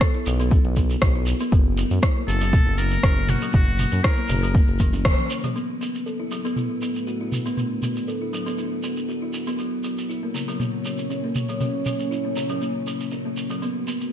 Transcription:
0.01 kalimba A4, kick, cross-stick, closed hi-hat, shekere
0.14 kalimba E4, open hi-hat
0.26 analog synth bass B1, kalimba F#3, open hi-hat, shekere
0.40 kalimba B3, closed hi-hat, shekere
0.51 kalimba E4, kick, closed hi-hat, shekere
0.65 analog synth bass B1, closed hi-hat
0.76 kalimba B3, kick, open hi-hat, shekere
0.90 closed hi-hat, shekere
1.01 analog synth bass B1, kalimba F#4, kick, cross-stick, closed hi-hat, shekere
1.15 kalimba E4, closed hi-hat
1.26 open hi-hat, shekere
1.40 kalimba B3, closed hi-hat, shekere
1.52 analog synth bass F#1, kalimba F#3, kick, closed hi-hat, shekere
1.77 kalimba F#3, open hi-hat, shekere
1.91 analog synth bass F#2, closed hi-hat, shekere
2.02 kalimba E4, kick, cross-stick, closed hi-hat, shekere
2.16 kalimba A#3
2.28 analog synth bass F#1, kalimba C#3, muted trumpet A4, open hi-hat, shekere
2.41 kalimba F#3, closed hi-hat, shekere
2.53 kalimba A#3, kick, closed hi-hat, mid tom, shekere
2.67 analog synth bass F#1, closed hi-hat
2.78 kalimba F#3, muted trumpet A#4, open hi-hat, shekere
2.91 closed hi-hat, shekere
3.03 analog synth bass F#1, kalimba C#4, kick, cross-stick, closed hi-hat, shekere
3.17 kalimba A#3, closed hi-hat
3.28 muted trumpet F#4, mid tom, open hi-hat, shekere
3.41 kalimba F#3, closed hi-hat, shekere
3.53 analog synth bass F#1, kalimba F#3, muted trumpet F#4, kick, closed hi-hat, mid tom, shekere
3.67 closed hi-hat
3.79 kalimba F#3, mid tom, open hi-hat, shekere
3.91 analog synth bass F#2, closed hi-hat, shekere
4.04 kalimba E4, muted trumpet A#4, kick, cross-stick, closed hi-hat, shekere
4.18 kalimba A#3, open hi-hat
4.28 analog synth bass F#1, kalimba C#3, mid tom, open hi-hat, shekere
4.43 kalimba F#3, closed hi-hat, shekere
4.55 kalimba A#3, kick, closed hi-hat, shekere
4.68 analog synth bass F#1, closed hi-hat
4.79 kalimba E3, kick, open hi-hat, high tom, shekere
4.93 kalimba C#4, closed hi-hat, high tom, shekere
5.05 analog synth bass E1, kalimba A#3, kick, cross-stick, closed hi-hat, mid tom, shekere
5.18 kalimba C#4, closed hi-hat, mid tom
5.30 open hi-hat, shekere
5.43 kalimba F#3, closed hi-hat, mid tom, shekere
5.55 analog synth pad A3 D4 F#4 B4, kalimba B3, shekere
5.81 kalimba B3, shekere
5.95 shekere
6.06 kalimba A4, shekere
6.20 kalimba E4
6.31 kalimba F#3, shekere
6.45 kalimba B3, shekere
6.56 kalimba E4, mid tom, shekere
6.82 kalimba B3, shekere
6.96 shekere
7.07 kalimba F#4, shekere
7.21 kalimba E4
7.32 mid tom, shekere
7.46 kalimba B3, shekere
7.57 kalimba B3, mid tom, shekere
7.82 kalimba B3, mid tom, shekere
7.96 shekere
8.08 kalimba A4, shekere
8.21 kalimba E4
8.33 kalimba F#3, shekere
8.46 kalimba B3, shekere
8.58 kalimba E4, shekere
8.83 kalimba B3, shekere
8.97 shekere
9.09 kalimba F#4, shekere
9.22 kalimba E4
9.33 shekere
9.47 kalimba B3, shekere
9.58 kalimba F#3, analog synth pad A#3 C#4 C#5, shekere
9.84 kalimba F#3, shekere
9.98 shekere
10.09 kalimba E4, shekere
10.23 kalimba A#3
10.34 kalimba C#3, shekere
10.48 kalimba F#3, shekere
10.60 kalimba A#3, mid tom, shekere
10.85 kalimba F#3, shekere
10.98 shekere
11.10 kalimba C#4, shekere
11.24 kalimba A#3
11.35 mid tom, shekere
11.49 kalimba F#3, shekere
11.60 kalimba F#3, mid tom, shekere
11.86 kalimba F#3, mid tom, shekere
11.99 shekere
12.11 kalimba E4, shekere
12.25 kalimba A#3
12.36 kalimba C#3, shekere
12.49 kalimba F#3, shekere
12.61 kalimba A#3, shekere
12.87 kalimba F#3, shekere
13.00 shekere
13.11 kalimba C#4, shekere
13.25 kalimba A#3
13.37 shekere
13.50 kalimba F#3, shekere
13.62 analog synth pad A3 D4 F#4 B4, kalimba B3, shekere
13.87 kalimba B3, shekere
14.01 shekere

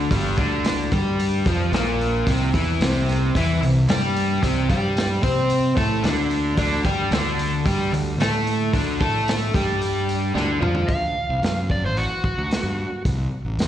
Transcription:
Already playing: overdriven electric guitar D3 D4
0.11 fingered electric bass G1, overdriven electric guitar G2 G3, kick, open hi-hat
0.37 fingered electric bass D2, overdriven electric guitar D3 D4, kick, open hi-hat
0.64 snare, open hi-hat
0.92 fingered electric bass G2, overdriven electric guitar G3 G4, kick, open hi-hat
1.19 open hi-hat
1.46 fingered electric bass F2, overdriven electric guitar F3 F4, kick, open hi-hat
1.72 fingered electric bass A#1, overdriven electric guitar A#2 A#3, snare, open hi-hat
2.01 open hi-hat
2.26 fingered electric bass C2, overdriven electric guitar C3 C4, kick, open hi-hat
2.54 fingered electric bass E2, overdriven electric guitar E3 E4, kick, open hi-hat
2.81 fingered electric bass C2, overdriven electric guitar C3 C4, snare, open hi-hat
3.09 snare, open hi-hat
3.35 fingered electric bass E2, overdriven electric guitar E3 E4, kick, open hi-hat
3.62 fingered electric bass C2, overdriven electric guitar C3, open hi-hat
3.89 fingered electric bass G2, overdriven electric guitar G3 G4, snare, open hi-hat
4.16 open hi-hat
4.43 fingered electric bass C2, overdriven electric guitar C3 C4, kick, open hi-hat
4.69 fingered electric bass G2, overdriven electric guitar G3 G4, kick, open hi-hat
4.97 snare, open hi-hat
5.23 fingered electric bass C3, overdriven electric guitar C4 C5, kick, open hi-hat
5.50 open hi-hat
5.76 fingered electric bass A2, overdriven electric guitar A3 A4, kick, open hi-hat
6.03 fingered electric bass D2, overdriven electric guitar D3 D4, snare, open hi-hat
6.31 open hi-hat
6.57 fingered electric bass D2, overdriven electric guitar D3 D4, kick, open hi-hat
6.85 fingered electric bass G2, overdriven electric guitar G3 G4, kick, open hi-hat
7.11 fingered electric bass D2, overdriven electric guitar D3 D4, snare, open hi-hat
7.39 open hi-hat
7.65 fingered electric bass G2, overdriven electric guitar G3 G4, kick, open hi-hat
7.92 fingered electric bass D2, overdriven electric guitar D3, open hi-hat
8.18 fingered electric bass A2, overdriven electric guitar A3 A4, snare, open hi-hat
8.47 open hi-hat
8.73 fingered electric bass D2, overdriven electric guitar D3 D4, kick, open hi-hat
9.00 fingered electric bass A2, overdriven electric guitar A3 A4, kick, open hi-hat
9.28 snare, open hi-hat
9.54 fingered electric bass G2, overdriven electric guitar G3 G4, kick, open hi-hat
9.82 open hi-hat
10.09 open hi-hat
10.35 fingered electric bass D2, overdriven electric guitar D3 D4, snare
10.61 fingered electric bass F2, overdriven electric guitar F3 F4, mid tom
10.75 floor tom
10.88 fingered electric bass D2, electric slide guitar F5, kick, open hi-hat
11.29 fingered electric bass C2
11.42 fingered electric bass F#2, snare, open hi-hat
11.70 electric slide guitar D5, kick
11.84 fingered electric bass A1, electric slide guitar C5
11.97 electric slide guitar F#4, open hi-hat
12.24 kick
12.38 fingered electric bass D2
12.51 snare, open hi-hat
12.63 fingered electric bass G2
13.05 fingered electric bass C2, kick, open hi-hat
13.45 fingered electric bass A1
13.57 fingered electric bass E2, snare, open hi-hat

